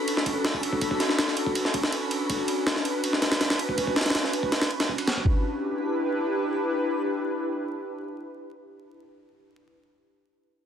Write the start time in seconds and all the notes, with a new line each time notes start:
Already playing: C#4 D4 F#4 A4 B4 B5
0.08 ride
0.17 snare
0.26 kick, ride
0.45 snare, ride
0.54 kick
0.63 ride
0.73 kick
0.81 kick, ride
0.91 kick
1.00 snare, ride
1.09 snare
1.19 snare, ride
1.28 snare
1.37 ride
1.46 kick
1.55 ride
1.65 snare
1.74 kick, ride
1.84 snare
1.93 ride
2.11 ride
2.30 B4, kick, ride
2.48 ride
2.67 snare, ride
2.76 snare
2.85 ride
3.04 ride
3.13 snare
3.22 snare, ride
3.32 snare, ride
3.41 snare, ride
3.50 snare, ride
3.59 ride
3.69 kick
3.78 kick, ride
3.87 kick
3.96 snare, ride
4.01 snare, ride
4.06 snare, ride
4.10 snare, ride
4.15 snare, ride
4.24 snare
4.33 ride
4.43 kick
4.52 snare, ride
4.61 snare, ride
4.71 ride
4.80 snare, ride
4.89 kick
4.98 ride
5.07 snare, ride
5.17 kick
5.26 D4 E4 G4 B4, kick